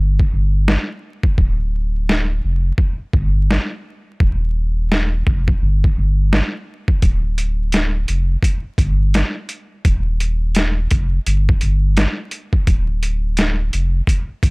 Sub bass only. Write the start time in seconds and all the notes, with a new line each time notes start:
Already playing: G1
0.33 G1
1.38 D1
2.44 F1
3.14 G1
4.21 D#1
5.27 F1
5.62 G1
5.97 G1
7.03 D1
8.09 F1
8.78 G1
9.85 D#1
10.92 F1
11.27 G1
11.62 G1
12.68 D1
13.74 F1
14.43 G1